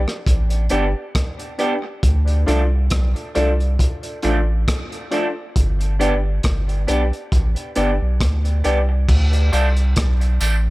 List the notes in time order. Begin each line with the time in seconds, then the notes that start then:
0.08 cross-stick
0.27 A1, kick, closed hi-hat
0.50 closed hi-hat
0.69 G1 B3 D4 G4 B4 D5, closed hi-hat
1.15 kick, cross-stick, closed hi-hat
1.39 closed hi-hat
1.58 B3 D4 G4 B4 D5, closed hi-hat
1.83 muted clean electric guitar stroke
2.03 D2, kick, closed hi-hat
2.28 closed hi-hat
2.46 C2 F3 A3 D4 F4 A4 D5, closed hi-hat
2.90 B1, kick, cross-stick, closed hi-hat
3.16 closed hi-hat
3.35 C2 F3 A3 D4 F4 A4 D5, closed hi-hat
3.60 closed hi-hat
3.79 kick, closed hi-hat
4.03 closed hi-hat
4.22 A1 F3 A3 D4 F4 A4 D5, closed hi-hat
4.68 kick, cross-stick, closed hi-hat
4.92 closed hi-hat
5.11 F3 A3 D4 F4 A4 D5, closed hi-hat
5.56 G1, kick, closed hi-hat
5.81 closed hi-hat
5.99 B3 D4 G4 B4 D5, closed hi-hat
6.43 G1, kick, cross-stick, closed hi-hat
6.69 closed hi-hat
6.87 B1 B3 D4 G4 B4 D5, closed hi-hat
7.13 closed hi-hat
7.32 A1, kick, closed hi-hat
7.56 closed hi-hat
7.76 G1 B3 D4 G4 B4 D5, closed hi-hat
8.02 B1
8.21 D2, kick, cross-stick, closed hi-hat
8.45 closed hi-hat
8.64 C2 B3 D4 G4 B4 D5, closed hi-hat
8.89 muted clean electric guitar stroke
9.09 D2, kick, crash
9.33 closed hi-hat
9.52 C2 F3 A3 D4 F4 A4 D5, closed hi-hat, tambourine
9.76 closed hi-hat
9.96 B1, kick, cross-stick, closed hi-hat
10.21 muted clean electric guitar stroke, closed hi-hat
10.40 A1 F3 A3 D4 F4 A4 D5, closed hi-hat, tambourine